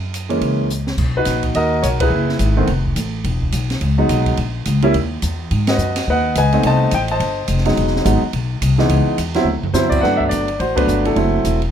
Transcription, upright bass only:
0.00 0.39 F#2 medium
0.41 0.95 C#2 medium
0.98 1.25 B1 medium
1.26 1.53 A#1 medium
1.54 1.82 D#2 medium
1.84 2.09 B1 medium
2.10 2.38 F#1 medium
2.39 2.67 G#1 medium
2.68 2.95 F1 medium
2.96 3.23 A1 medium
3.24 3.51 E1 medium
3.53 3.80 B1 medium
3.81 4.08 C#2 medium
4.09 4.36 B1 medium
4.38 4.65 A#1 medium
4.66 4.93 C#2 medium
4.94 5.21 D#2 medium
5.23 5.50 E2 medium
5.51 5.77 G#2 medium
5.78 6.05 F#2 medium
6.07 6.34 D#2 medium
6.36 6.63 C#2 medium
6.63 6.91 C2 medium
6.92 7.19 A1 medium
7.20 7.47 G1 medium
7.48 7.75 F1 medium
7.77 8.04 E1 medium
8.05 8.21 G#1 medium
8.22 muted upright bass stroke soft
8.33 8.60 B1 medium
8.61 8.89 C2 medium
8.89 9.05 C#2 medium
9.07 muted upright bass stroke soft
9.18 9.44 E2 medium
9.44 9.61 D2 medium
9.63 muted upright bass stroke soft
9.73 10.01 F#2 medium
10.03 10.30 G2 medium
10.31 10.59 G1 medium
10.60 10.87 A1 medium
10.87 11.15 G1 medium
11.16 11.44 F#1 medium
11.45 11.71 E1 medium

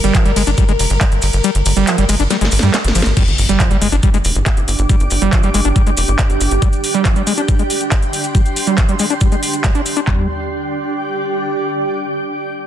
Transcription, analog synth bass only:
0.04 0.11 G1 medium
0.25 0.33 G1 medium
0.36 0.44 G1 loud
0.47 0.55 G1 medium
0.69 0.76 G1 medium
0.79 0.87 F1 loud
0.90 0.98 G1 loud
1.12 1.19 G1 medium
1.23 1.30 G1 loud
1.33 1.41 G1 medium
1.55 1.63 G1 medium
1.66 1.73 G1 loud
1.77 1.84 G1 medium
1.98 2.06 G1 medium
2.09 2.17 G1 loud
2.20 2.27 G1 medium
2.41 2.49 G1 medium
2.52 2.60 G#1 loud
2.63 2.71 G2 loud
2.84 2.92 G1 medium
2.95 3.03 G1 loud
3.06 3.14 G#1 loud
3.28 3.35 G1 medium
3.38 3.46 G1 loud
3.49 3.57 G1 medium
3.71 3.78 G1 medium
3.82 3.89 G1 loud
3.92 4.00 G1 medium
4.14 4.22 G1 medium
4.25 4.32 F1 loud
4.36 4.43 G1 medium
4.57 4.65 G1 medium
4.68 4.76 G1 loud
4.79 4.86 G1 medium
5.00 5.08 G1 medium
5.11 5.19 G1 loud
5.22 5.29 G1 medium
5.43 5.51 G1 medium
5.54 5.62 G1 loud
5.65 5.73 G1 medium
5.87 5.94 G1 medium
5.97 6.05 F1 loud
6.08 6.16 G1 medium
6.30 6.37 G1 medium
6.41 6.48 G1 loud
6.51 6.59 G1 medium
10.07 10.28 G1 loud

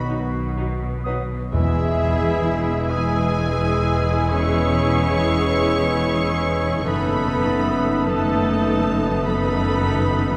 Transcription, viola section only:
0.09 0.17 D#4 soft
0.09 0.17 F#4 soft
0.57 0.65 D#4 soft
0.57 0.65 F#4 soft
1.06 1.15 D#4 soft
1.06 1.14 F#4 soft
1.54 2.86 E4 medium
1.54 2.86 G#4 medium
2.90 6.81 E4 medium
2.90 6.81 G#4 medium
6.84 8.05 D#4 medium
6.84 8.04 A4 medium
8.06 9.23 D#4 medium
8.06 9.23 A4 medium
9.25 10.37 D#4 medium
9.25 10.37 A4 medium

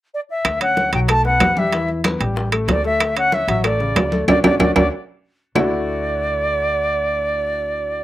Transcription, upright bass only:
0.45 0.89 D2 medium
0.93 1.37 B1 medium
1.41 2.15 E2 medium
2.20 2.65 A1 medium
2.68 3.42 D2 medium
3.48 3.92 A1 medium
3.96 4.26 D2 medium
4.28 4.40 D2 loud
4.44 4.56 D2 medium
4.59 4.72 D2 medium
4.76 4.88 D2 medium
5.55 8.04 D2 medium

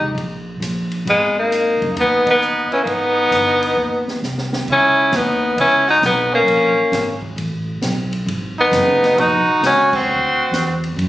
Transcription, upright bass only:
0.01 0.14 C#2 medium
0.15 0.57 A#1 medium
0.60 1.03 A#1 medium
1.05 1.77 G#1 medium
1.81 1.95 F#1 medium
1.96 2.67 D#2 medium
2.71 muted upright bass stroke soft
2.85 3.28 G#1 medium
3.31 3.73 G1 medium
3.76 4.19 D#2 medium
4.22 4.64 C2 medium
4.67 5.11 C#2 medium
5.12 5.56 D#2 loud
5.57 6.01 C#2 medium
6.02 6.46 B1 medium
6.46 6.75 A#1 medium
6.77 muted upright bass stroke soft
6.92 7.36 G#1 loud
7.36 7.81 A1 medium
7.81 8.25 B1 medium
8.26 8.71 G#1 medium
8.72 9.15 F#1 loud
9.16 9.45 A#1 medium
9.45 muted upright bass stroke soft
9.61 10.05 C#2 medium
10.06 10.50 D2 medium
10.51 10.95 E2 medium
10.96 11.09 F#2 medium

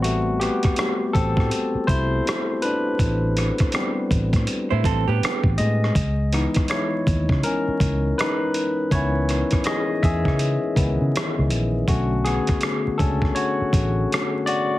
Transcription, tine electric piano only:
0.00 0.73 G3 medium
0.00 0.40 B3 soft
0.00 0.74 C4 medium
0.00 0.41 F#4 medium
0.05 0.38 A3 medium
0.40 1.11 B3 medium
0.40 1.16 G4 medium
1.13 1.85 C4 medium
1.13 1.90 A4 medium
1.87 2.59 E4 medium
1.87 2.64 C5 loud
2.62 3.33 D4 medium
2.62 3.32 B4 medium
3.73 4.81 G3 medium
3.73 4.81 B3 soft
3.73 4.81 C4 medium
5.58 6.66 G#3 medium
5.58 6.73 D#5 medium
6.33 6.85 E3 medium
6.33 6.86 B3 soft
6.33 6.86 D#4 medium
6.70 7.41 E4 medium
6.70 7.40 C#5 medium
7.44 8.15 C#4 medium
7.44 8.20 A#4 medium
8.18 8.89 D#4 medium
8.18 8.94 B4 medium
8.92 10.76 E3 medium
8.92 10.76 B3 soft
8.92 11.85 C#4 medium
8.92 9.63 E4 medium
8.92 9.68 C#5 medium
9.66 10.01 G#4 medium
9.66 10.04 D#5 loud
10.03 11.48 G#4 medium
10.03 11.47 E5 medium
10.77 11.11 D#3 medium
10.77 11.11 E3 soft
10.77 11.11 B3 soft
11.88 12.41 D3 medium
11.88 12.23 A3 medium
11.88 12.41 C#4 medium
11.88 12.26 F#4 medium
12.24 12.96 B3 medium
12.24 13.01 G#4 medium
12.98 13.33 A3 soft
12.98 13.34 C#4 medium
12.98 13.32 D4 soft
12.98 13.37 A4 medium
13.35 14.07 F#4 medium
13.35 14.06 C#5 medium
14.46 14.79 F#4 medium
14.46 14.79 D5 loud

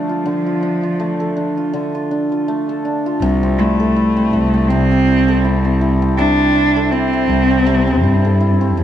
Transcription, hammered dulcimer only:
0.00 0.24 D3 medium
0.00 0.99 A3 medium
0.00 0.92 C4 medium
0.00 0.62 D4 medium
0.00 1.20 A4 medium
0.09 0.46 F4 medium
0.26 1.72 D3 medium
0.46 0.83 F4 medium
0.62 1.36 D4 medium
0.83 1.57 F4 medium
1.00 2.48 A3 medium
1.20 2.69 A4 medium
1.37 2.11 D4 medium
1.57 1.94 F4 medium
1.73 3.27 D3 medium
1.95 2.31 F4 medium
2.11 2.85 D4 medium
2.32 3.06 F4 medium
2.48 8.84 A3 medium
2.69 3.79 A4 medium
2.85 6.58 D4 medium
3.06 3.65 F4 medium
3.22 4.69 C3 medium
3.43 4.16 C4 medium
3.59 3.96 E4 medium
3.80 5.28 A4 medium
3.96 4.33 E4 medium
4.17 4.53 C4 medium
4.33 5.07 E4 medium
4.54 4.91 C4 medium
4.70 6.17 C3 medium
4.91 5.64 C4 medium
5.08 5.44 E4 medium
5.28 6.76 A4 medium
5.44 5.81 E4 medium
5.65 6.02 C4 medium
5.81 6.55 E4 medium
6.02 6.39 C4 medium
6.19 7.65 C3 medium
6.39 7.13 C4 medium
6.55 6.92 E4 medium
6.76 8.24 A4 medium
6.92 7.29 E4 medium
7.13 7.50 C4 medium
7.30 8.03 E4 medium
7.50 7.87 C4 medium
7.67 8.84 C3 medium
7.87 8.60 C4 medium
8.03 8.40 E4 medium
8.25 8.84 A4 medium
8.40 8.77 E4 medium
8.61 8.84 C4 medium
8.77 8.84 E4 medium

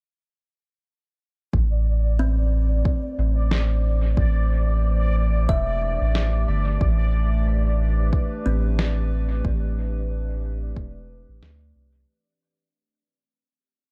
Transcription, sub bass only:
1.53 2.83 A1 loud
3.18 4.14 A1 medium
4.17 5.46 A1 loud
5.49 5.97 E1 medium
6.01 6.45 A1 medium
6.48 6.78 G1 medium
6.81 8.10 A1 loud
8.46 9.42 A1 medium
9.45 10.74 A1 loud
10.76 11.25 E1 medium
11.29 11.42 A1 medium
11.42 11.72 D2 medium
11.75 12.05 C2 medium

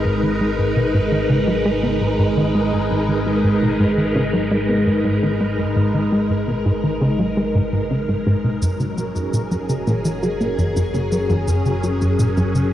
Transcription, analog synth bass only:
0.05 0.20 G#2 medium
0.23 0.33 D#3 medium
0.41 0.51 G#3 medium
0.58 0.73 G#2 medium
0.76 0.86 B2 medium
0.94 1.00 G#2 loud
1.12 1.22 D#3 medium
1.30 1.45 C#3 loud
1.48 1.63 F#3 medium
1.65 1.72 G#3 loud
1.83 1.98 B3 medium
2.01 2.16 G#2 medium
2.19 2.34 G#2 loud
2.37 2.52 D#3 loud
2.55 2.61 G#3 medium
2.73 2.79 G#2 medium
2.91 3.06 G#2 medium
3.09 3.19 D#3 medium
3.26 3.36 G#3 medium
3.44 3.59 G#2 medium
3.62 3.72 B2 medium
3.80 3.86 G#2 loud
3.98 4.08 D#3 medium
4.16 4.31 C#3 loud
4.33 4.48 F#3 medium
4.51 4.57 G#3 loud
4.69 4.84 B3 medium
4.87 5.02 G#2 medium
5.05 5.20 G#2 loud
5.23 5.38 D#3 medium
5.41 5.47 G#3 medium
5.59 5.65 G#2 medium
5.76 5.91 G#2 medium
5.94 6.04 D#3 medium
6.12 6.22 G#3 medium
6.30 6.45 G#2 medium
6.48 6.58 B2 medium
6.66 6.72 G#2 loud
6.84 6.94 D#3 medium
7.01 7.16 C#3 loud
7.19 7.34 F#3 medium
7.37 7.43 G#3 loud
7.55 7.61 G#2 loud
7.73 7.83 G#2 medium
7.91 8.06 C#3 medium
8.09 8.19 G#2 medium
8.27 8.36 G#2 loud
8.44 8.59 B2 medium
8.62 8.77 F#2 medium
8.80 8.90 C#3 medium
8.98 9.08 F#3 medium
9.15 9.31 F#2 medium
9.33 9.43 A#2 medium
9.51 9.57 F#2 loud
9.69 9.79 C#3 medium
9.87 10.02 A#2 loud
10.05 10.20 E3 medium
10.23 10.29 F#3 loud
10.40 10.56 A#3 medium
10.58 10.73 F#2 medium
10.76 10.91 F#2 loud
10.94 11.09 C#3 medium
11.12 11.18 F#3 medium
11.30 11.36 F#2 medium
11.48 11.63 F#2 medium
11.66 11.76 C#3 medium
11.83 11.93 F#3 medium
12.01 12.16 F#2 medium
12.19 12.29 A#2 medium
12.37 12.43 F#2 loud
12.55 12.65 C#3 medium

